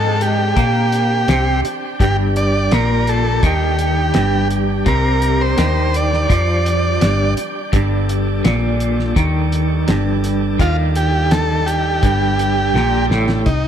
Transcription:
Already playing: picked electric bass G#2, clean electric guitar G#3, tonewheel organ C4 D4 G4, transistor combo organ A4
0.21 transistor combo organ G4, closed hi-hat
0.56 picked electric bass A#2, clean electric guitar A#3, kick, closed hi-hat
0.92 closed hi-hat
1.28 picked electric bass C2, clean electric guitar C3, snare, closed hi-hat
1.65 muted clean electric guitar stroke, closed hi-hat
2.00 picked electric bass G1, clean electric guitar G2, tonewheel organ G3, transistor combo organ G4, kick, closed hi-hat
2.36 transistor combo organ D5, closed hi-hat
2.71 picked electric bass A#1, clean electric guitar A#2, transistor combo organ A#4, snare, closed hi-hat
3.07 transistor combo organ A4, closed hi-hat
3.43 picked electric bass D#2, clean electric guitar D#3, transistor combo organ G4, kick, closed hi-hat
3.79 closed hi-hat
4.14 picked electric bass G1, clean electric guitar G2, snare, closed hi-hat
4.50 closed hi-hat
4.86 picked electric bass C2, clean electric guitar C3, transistor combo organ A#4, kick, closed hi-hat
5.22 closed hi-hat
5.41 transistor combo organ C5
5.58 picked electric bass D#2, clean electric guitar D#3, snare, closed hi-hat
5.94 transistor combo organ D5, closed hi-hat
6.13 snare
6.29 picked electric bass F2, clean electric guitar F3, kick, closed hi-hat
6.66 closed hi-hat
7.01 picked electric bass G1, clean electric guitar G2, snare, closed hi-hat
7.37 closed hi-hat
7.72 picked electric bass G1, clean electric guitar G2, tonewheel organ A4, kick, closed hi-hat
8.09 closed hi-hat
8.44 picked electric bass A#1, clean electric guitar A#2, snare, closed hi-hat
8.80 closed hi-hat
9.00 snare
9.16 picked electric bass D#2, clean electric guitar D#3, kick, closed hi-hat
9.52 closed hi-hat
9.88 picked electric bass G1, clean electric guitar G2, snare, closed hi-hat
10.24 closed hi-hat
10.59 picked electric bass D#2, clean electric guitar D#3, transistor combo organ F4, kick, closed hi-hat
10.95 transistor combo organ G4, closed hi-hat
11.31 transistor combo organ A4, snare, closed hi-hat
11.66 transistor combo organ G4, closed hi-hat
12.03 picked electric bass G1, clean electric guitar G2, kick, closed hi-hat
12.39 closed hi-hat
12.74 picked electric bass A#1, clean electric guitar A#2, snare
13.10 picked electric bass A1, clean electric guitar A2, snare
13.29 snare
13.46 picked electric bass C2, transistor combo organ D#4, kick, closed hi-hat

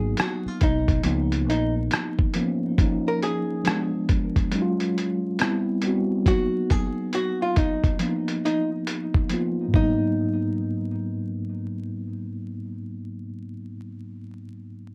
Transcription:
Already playing: fingered electric bass G#1, tine electric piano F#3 A#3 B3 D#4, hollow-body jazz guitar G#4
0.17 hollow-body jazz guitar F#4, cross-stick, closed hi-hat
0.46 hollow-body jazz guitar F4, muted fingered electric bass stroke
0.61 fingered electric bass B1, hollow-body jazz guitar D#4, kick, closed hi-hat
0.88 kick, closed hi-hat
1.03 fingered electric bass C#2, tine electric piano F3 A#3 B3 D#4, closed hi-hat
1.32 closed hi-hat
1.48 fingered electric bass A#1, hollow-body jazz guitar D#4, closed hi-hat
1.91 cross-stick, closed hi-hat
2.19 kick
2.34 tine electric piano F3 A#3 B3, closed hi-hat
2.39 tine electric piano C#4
2.78 tine electric piano F3 A#3 C#4 D#4, kick, closed hi-hat
3.08 hollow-body jazz guitar A#4
3.22 hollow-body jazz guitar G#4, closed hi-hat
3.64 tine electric piano F3 G#3 B3 D4, cross-stick, closed hi-hat
4.09 kick, closed hi-hat
4.36 kick, closed hi-hat
4.51 tine electric piano F#3 G#3 C#4 D#4, closed hi-hat
4.62 tine electric piano F4
4.80 closed hi-hat
4.98 closed hi-hat
5.39 tine electric piano G3 B3 C4 E4, cross-stick, closed hi-hat
5.82 tine electric piano G3 B3 C4, closed hi-hat
5.86 tine electric piano F#4
6.25 tine electric piano F#3 A#3 B3 D#4, hollow-body jazz guitar F#4, kick, closed hi-hat
6.70 hollow-body jazz guitar G#4, kick, closed hi-hat
7.13 hollow-body jazz guitar F#4, closed hi-hat
7.42 hollow-body jazz guitar F4
7.56 hollow-body jazz guitar D#4, kick, closed hi-hat
7.84 kick, closed hi-hat
7.99 tine electric piano F3 A#3 B3 D4, closed hi-hat
8.09 tine electric piano D#4
8.28 closed hi-hat
8.45 hollow-body jazz guitar D#4, closed hi-hat
8.87 closed hi-hat
9.14 kick
9.29 tine electric piano F3 A#3 B3, closed hi-hat
9.34 tine electric piano F4
9.68 tine electric piano G#2 F#3
9.74 tine electric piano A#3, hollow-body jazz guitar D#4, kick
9.79 tine electric piano B3 D#4

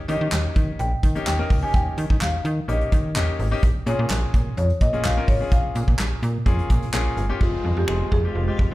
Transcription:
0.08 fm bass D#3, grand piano A#3 C#4 D#4 G4, marimba D#5, closed hi-hat
0.21 fm bass D#3
0.32 fm bass D#2, snare, clap, closed hi-hat
0.56 fm bass D#3, kick, closed hi-hat
0.79 fm bass A#1, marimba G5, closed hi-hat
1.03 fm bass D#3, kick, closed hi-hat
1.15 grand piano A#3 C#4 D#4 G4, closed hi-hat
1.26 fm bass D#2, marimba G5, snare, clap, closed hi-hat
1.39 grand piano A#3 C#4 D#4 A#4
1.50 fm bass C#2, kick, open hi-hat
1.63 grand piano A#3 C#4 D#4 G4, marimba G#5
1.74 fm bass D#2, marimba G5, kick, closed hi-hat
1.98 fm bass D#3, closed hi-hat
2.10 fm bass D#3, kick
2.21 fm bass D#2, marimba F5, snare, clap, closed hi-hat
2.45 fm bass D#3, closed hi-hat
2.68 fm bass A#1, grand piano A#3 C#4 D#4 G4, marimba D#5, closed hi-hat
2.81 closed hi-hat
2.92 fm bass D#3, kick, closed hi-hat
3.15 fm bass D#2, grand piano A#3 C#4 D#4 G4, snare, clap, closed hi-hat
3.39 fm bass G#1, open hi-hat
3.51 grand piano A#3 C#4 D#4 G4
3.63 fm bass A#1, kick, closed hi-hat
3.86 fm bass A#2, grand piano A#3 C#4 F4 G#4, marimba C#5, closed hi-hat
3.99 fm bass A#2
4.10 fm bass A#1, snare, clap, closed hi-hat
4.34 fm bass A#2, kick, closed hi-hat
4.57 fm bass F2, marimba C#5, closed hi-hat
4.70 closed hi-hat
4.81 fm bass A#2, marimba D#5, kick, closed hi-hat
4.93 grand piano A#3 C#4 F4 G#4, closed hi-hat
5.04 fm bass A#1, marimba F5, snare, clap, closed hi-hat
5.17 grand piano A#3 C#4 F4 A#4
5.28 fm bass G#1, marimba C#5, kick, open hi-hat
5.40 grand piano A#3 C#4 F4 G#4
5.52 fm bass A#1, marimba F5, kick, closed hi-hat
5.75 fm bass A#2, closed hi-hat
5.88 fm bass A#2, kick
5.99 fm bass A#1, snare, clap, closed hi-hat
6.23 fm bass A#2, closed hi-hat
6.46 fm bass F2, grand piano A#3 C#4 F4 G#4, kick, closed hi-hat
6.59 closed hi-hat
6.70 fm bass A#2, kick, closed hi-hat
6.82 closed hi-hat
6.93 fm bass A#1, grand piano A#3 C#4 F4 G#4, snare, clap, closed hi-hat
7.17 fm bass G1, closed hi-hat
7.29 grand piano A#3 C#4 F4 G4
7.40 fm bass F1, grand piano G#3 C4 F4 G#4, ambient pad G#3 F4 C5, marimba F4, kick, downlifter
7.64 fm bass F2
7.77 fm bass F2, marimba G4
7.88 fm bass F1, grand piano G#3 C4 F4 G#4, finger snap
8.12 fm bass F2, marimba G#4, kick
8.24 grand piano G#3 C4 F4 G4
8.35 fm bass F1
8.48 grand piano G#3 C4 F4 G4
8.59 fm bass F2, kick

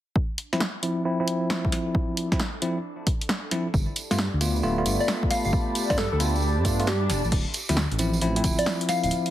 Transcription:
0.16 analog synth pad D4, kick
0.38 open hi-hat
0.53 tine electric piano F3 C4 E4, analog synth pad A4, snare
0.60 snare
0.83 tine electric piano F3 C4 E4, open hi-hat
1.05 tine electric piano F3 C4 E4
1.20 tine electric piano F3 C4 E4
1.28 open hi-hat
1.50 snare
1.65 kick
1.72 snare, open hi-hat
1.95 kick
2.17 open hi-hat
2.32 tine electric piano F3 C4 E4, kick, snare
2.40 snare
2.62 tine electric piano F3 C4 E4, open hi-hat
3.07 kick, open hi-hat
3.21 open hi-hat
3.29 snare
3.51 tine electric piano F3 C4 E4, snare, open hi-hat
3.74 detuned saw bass G1, analog synth pad G4, kick, tambourine
3.95 analog synth pad D5, open hi-hat, tambourine
4.11 detuned saw bass G2, tine electric piano A3 B3 F4, snare, tambourine
4.18 snare, tambourine
4.27 analog synth pad B5
4.34 detuned saw bass D2
4.41 tine electric piano A3 B3 F4, open hi-hat, tambourine
4.56 analog synth pad A5, tambourine
4.63 detuned saw bass D1, tine electric piano A3 B3 F4, tambourine
4.78 tine electric piano A3 B3 F4
4.86 detuned saw bass G1, open hi-hat, tambourine
5.00 soft synth lead D5, tambourine
5.08 snare
5.23 kick
5.31 soft synth lead F5, snare, open hi-hat, tambourine
5.45 detuned saw bass G1, soft synth lead F5, tambourine
5.53 kick, tambourine
5.75 open hi-hat, tambourine
5.90 detuned saw bass G2, tine electric piano A3 B3 F4, soft synth lead D5, kick, snare, tambourine
5.98 soft synth lead A4, snare, tambourine
6.13 detuned saw bass D2, soft synth lead A4
6.20 tine electric piano A3 B3 F4, open hi-hat, tambourine
6.36 tambourine
6.42 tambourine, swell
6.57 detuned saw bass G2
6.65 tine electric piano A3 B3 F4, kick, open hi-hat, tambourine
6.80 tine electric piano A3 B3 F4, open hi-hat, tambourine
6.87 soft synth lead G4, snare, tambourine
7.10 detuned saw bass D1, analog synth pad D4, snare, open hi-hat, tambourine
7.23 detuned saw bass A1, analog synth pad F4 A4, tambourine
7.32 detuned saw bass D1, kick, closed hi-hat, crash, tambourine
7.54 open hi-hat, tambourine
7.69 detuned saw bass D2, tine electric piano F3 C4 E4, snare, closed hi-hat, tambourine
7.77 snare, tambourine
7.92 detuned saw bass A1, closed hi-hat
7.99 tine electric piano F3 C4 E4, open hi-hat, tambourine
8.13 tambourine
8.21 detuned saw bass A1, tine electric piano F3 C4 E4, closed hi-hat, tambourine
8.36 tine electric piano F3 C4 E4, closed hi-hat
8.44 detuned saw bass D1, kick, open hi-hat, tambourine
8.58 soft synth lead D5, closed hi-hat, tambourine
8.66 snare, tambourine
8.81 closed hi-hat
8.89 soft synth lead F5, snare, open hi-hat, tambourine
9.03 detuned saw bass D1, soft synth lead F5, closed hi-hat, tambourine
9.11 closed hi-hat, tambourine
9.26 open hi-hat

